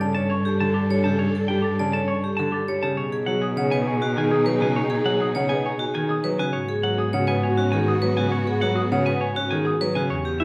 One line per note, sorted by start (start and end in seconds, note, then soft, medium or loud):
0.00 2.82 G2 medium
0.00 0.20 C#3 medium
0.00 2.79 D4 medium
0.00 2.79 A4 medium
0.00 0.25 A4 medium
0.00 0.20 D5 medium
0.00 0.20 A5 medium
0.15 0.35 C#4 medium
0.15 0.35 C#5 medium
0.15 0.34 A5 medium
0.30 0.49 C#5 medium
0.30 0.50 C#6 medium
0.35 0.56 A4 medium
0.45 0.64 G4 medium
0.60 0.79 D3 medium
0.60 0.80 A4 medium
0.60 0.79 A5 medium
0.66 0.88 A4 medium
0.74 0.94 G4 medium
0.74 0.94 A6 medium
0.90 1.09 G3 medium
0.90 1.09 C#5 loud
0.97 1.19 A4 medium
1.04 1.24 C#3 medium
1.04 1.24 G4 medium
1.04 1.24 A5 medium
1.19 1.38 C#5 medium
1.28 1.50 A4 medium
1.35 1.54 A4 medium
1.48 1.69 G3 medium
1.48 1.69 G4 medium
1.48 1.68 G5 medium
1.60 1.83 G4 medium
1.60 1.81 A4 medium
1.64 1.83 A6 medium
1.79 1.99 C#3 medium
1.79 1.98 D5 medium
1.79 1.98 A5 medium
1.91 2.12 A4 medium
1.91 2.13 C#5 medium
1.91 2.13 A5 medium
1.95 2.13 C#4 medium
2.08 2.28 C#5 loud
2.08 2.28 C#6 medium
2.22 2.43 G4 medium
2.22 2.43 A4 medium
2.37 2.58 D3 medium
2.37 2.58 A4 medium
2.37 2.57 A5 medium
2.52 2.72 G4 medium
2.52 2.74 A4 soft
2.52 2.73 A6 medium
2.68 2.87 G3 medium
2.68 2.87 C#5 medium
2.83 3.02 C#3 medium
2.83 3.02 G4 medium
2.83 3.02 A5 medium
2.97 6.38 B2 medium
2.97 6.36 D#4 medium
2.97 6.35 G#4 medium
2.97 3.20 G#4 soft
2.97 3.17 C#5 medium
3.12 3.32 G#4 medium
3.26 3.47 F#3 medium
3.26 3.47 F#4 medium
3.26 3.51 G#4 medium
3.26 3.46 F#5 medium
3.42 3.61 G#4 medium
3.42 3.62 D#6 medium
3.57 3.76 C#3 medium
3.57 3.82 G#4 medium
3.57 3.76 C#5 loud
3.57 3.77 F#5 medium
3.71 3.91 B3 medium
3.71 3.91 B4 medium
3.71 3.91 G#5 medium
3.87 4.06 C#5 medium
3.87 4.06 G#5 medium
3.92 4.13 G#4 medium
4.02 4.21 F#4 loud
4.16 4.36 D#3 medium
4.16 4.36 G#4 medium
4.16 4.36 G#5 medium
4.23 4.44 G#4 medium
4.31 4.51 G#4 medium
4.31 4.51 D#6 medium
4.46 4.65 F#3 medium
4.46 4.65 B4 loud
4.53 4.75 G#4 medium
4.61 4.80 C#3 medium
4.61 4.80 F#4 medium
4.61 4.81 G#5 medium
4.76 4.95 C#5 loud
4.84 5.06 G#4 medium
4.90 5.10 G#4 loud
5.05 5.25 F#3 medium
5.05 5.25 F#4 medium
5.05 5.25 F#5 medium
5.15 5.36 G#4 medium
5.20 5.40 G#4 medium
5.20 5.40 D#6 medium
5.35 5.55 C#3 medium
5.35 5.54 C#5 loud
5.35 5.55 F#5 medium
5.45 5.67 G#4 medium
5.45 5.69 G#5 medium
5.50 5.69 B3 medium
5.50 5.69 B4 medium
5.65 5.84 C#5 loud
5.65 5.84 G#5 medium
5.77 5.99 F#4 loud
5.77 5.99 G#4 medium
5.94 6.14 D#3 medium
5.94 6.14 G#4 medium
5.94 6.14 G#5 medium
6.08 6.30 G#4 soft
6.08 6.29 G#4 medium
6.08 6.29 D#6 medium
6.24 6.44 F#3 medium
6.24 6.43 B4 loud
6.39 6.59 C#3 medium
6.39 6.59 F#4 medium
6.39 6.59 G#5 medium
6.53 9.95 G#2 medium
6.53 9.92 B3 medium
6.53 9.92 F#4 loud
6.53 6.76 F#4 soft
6.53 6.73 C#5 loud
6.69 6.88 G#4 loud
6.83 7.03 F#3 medium
6.83 7.03 F#4 medium
6.83 7.08 F#4 medium
6.83 7.03 F#5 medium
6.98 7.18 G#4 medium
6.98 7.18 D#6 medium
7.13 7.33 C#3 medium
7.13 7.33 C#5 loud
7.13 7.33 F#5 loud
7.17 7.39 F#4 medium
7.27 7.48 B3 medium
7.27 7.47 B4 medium
7.27 7.47 G#5 medium
7.43 7.62 C#5 medium
7.43 7.63 G#5 medium
7.48 7.69 F#4 medium
7.58 7.77 C#4 medium
7.58 7.77 F#4 loud
7.72 7.92 D#3 medium
7.72 7.92 G#4 medium
7.72 7.92 G#5 medium
7.79 8.01 F#4 medium
7.88 8.07 G#4 medium
7.88 8.07 D#6 medium
8.02 8.22 F#3 medium
8.02 8.22 B4 loud
8.10 8.32 F#4 medium
8.17 8.37 C#3 medium
8.17 8.37 F#4 medium
8.17 8.36 G#5 medium
8.32 8.51 C#5 loud
8.41 8.63 F#4 medium
8.47 8.66 G#4 loud
8.61 8.81 F#3 medium
8.61 8.81 F#4 medium
8.61 8.81 F#5 medium
8.72 8.94 F#4 medium
8.72 8.96 G#4 medium
8.77 8.96 D#6 medium
8.92 9.11 C#3 medium
8.92 9.11 C#5 loud
8.92 9.11 F#5 loud
9.03 9.25 F#4 medium
9.03 9.26 B4 medium
9.03 9.26 G#5 medium
9.08 9.26 B3 medium
9.21 9.40 C#5 loud
9.21 9.41 G#5 medium
9.35 9.56 C#4 medium
9.35 9.56 F#4 medium
9.35 9.55 F#4 loud
9.51 9.71 D#3 medium
9.51 9.70 G#4 medium
9.51 9.70 G#5 medium
9.65 9.87 F#4 soft
9.65 9.85 G#4 loud
9.65 9.85 D#6 medium
9.81 10.00 F#3 medium
9.81 10.00 B4 loud
9.95 10.15 C#3 medium
9.95 10.15 F#4 medium
9.95 10.15 G#5 medium
10.10 10.44 E2 medium
10.10 10.44 D4 medium
10.10 10.44 G4 medium
10.10 10.33 G4 soft
10.10 10.30 C#5 loud
10.25 10.44 G4 medium
10.40 10.44 E3 medium
10.40 10.44 E4 medium
10.40 10.44 E5 medium